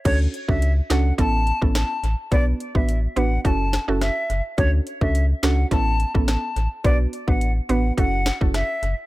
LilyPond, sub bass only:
\new Staff \with { instrumentName = "Sub bass" } { \clef bass \time 4/4 \key d \lydian \tempo 4 = 106 d,8 r16 cis,8. cis,8 a,,8. a,,8 r16 a,,16 r16 | b,,8 r16 a,,8. a,,8 fis,,8. fis,,8 r16 fis,,16 r16 | d,8 r16 cis,8. cis,8 a,,8. a,,8 r16 a,,16 r16 | b,,8 r16 a,,8. a,,8 fis,,8. fis,,8 r16 fis,,16 r16 | }